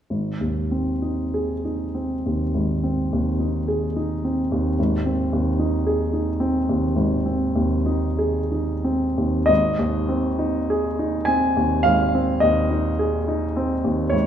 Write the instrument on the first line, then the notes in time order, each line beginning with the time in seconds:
grand piano
0.10 G#1
0.41 D#2
0.71 C4
1.02 D#4
1.34 G#4
1.65 D#4
1.95 C4
2.26 D#2
2.54 G#1
2.83 C4
3.13 D#2
3.40 D#4
3.68 G#4
3.96 D#4
4.25 C4
4.52 D#2
4.79 G#1
5.06 C4
5.33 D#2
5.59 D#4
5.87 G#4
6.13 D#4
6.40 C4
6.69 D#2
6.96 G#1
7.26 C4
7.56 D#2
7.86 D#4
8.18 G#4
8.52 D#4
8.84 C4
9.18 D#2
9.46 G#1 D#5
9.79 D#2
10.09 C4
10.39 D#4
10.70 G#4
10.99 D#4
11.25 C4 G#5
11.57 D#2
11.83 G#1 F5
12.15 C4
12.40 D#2 D#5
12.70 D#4
12.99 G#4
13.28 D#4
13.57 C4
13.84 D#2
14.10 G#1 C#5